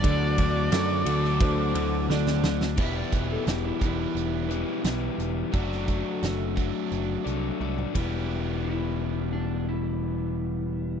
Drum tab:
CC |----------------|x---------------|----------------|----------------|
RD |x-x-x-x-x-x-----|----------------|--------------x-|----------------|
HH |----------------|--x-x-x-x-x-x-x-|x-x-x-x-x-x-----|----------------|
SD |----o--o----oooo|----o-------o---|-o--o-----------|----------------|
T1 |----------------|----------------|------------o---|----------------|
T2 |----------------|----------------|-------------o--|----------------|
BD |o-o-----o-------|o-o---o---------|o-o---o-------o-|----------------|